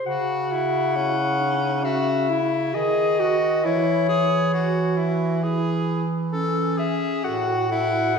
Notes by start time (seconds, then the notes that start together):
0.04 C#3 F#4 F#5
0.52 E4
0.96 C#4 E4
1.40 D#4
1.83 C#4 F#4 E5
2.30 E4
2.74 D#3 G#4 D#5
3.20 F#4
3.64 E3 E4 C#5
4.09 G#4
4.54 F#4
4.98 E4
5.43 E4 G#4
6.32 C#4 A4
6.78 G#4 E5
7.24 A2 F#4 A4 F#5
7.48 F#4
7.70 E4 A4
7.93 F#4